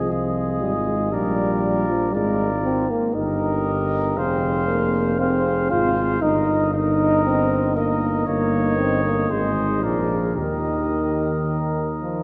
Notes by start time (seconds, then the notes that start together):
Already playing: C2 F3 G#4 D#5
0.11 C2 F4 G#4 D#5
0.61 G#1 G3
0.87 G#3
1.12 A#1 G3 F4 A#4 D5
1.89 F3
2.15 G#1 G#3 F4 A#4 D5
2.65 C4
2.90 A#3
3.15 G1 D#4 G4 A#4 D#5
4.17 F1 C4 G#4 C5 F5
4.68 A#3
5.19 C4 G#4 C5 F5
5.71 G#1 F4 G#4 C5 F5
6.21 G1 D#4 A#4 D#5
6.73 D#4 A#4 D#5
7.24 C4
7.76 A#3 D#4 A#4 D#5
8.26 G1 A#3 D#4 C#5 D#5
8.78 C4
9.04 A#3
9.30 G#1 G#3 G#4 C5 D#5
9.83 A#1 F3 G#4 A#4 D5
10.37 D#2 D#3 G4 A#4 D#5
12.00 F3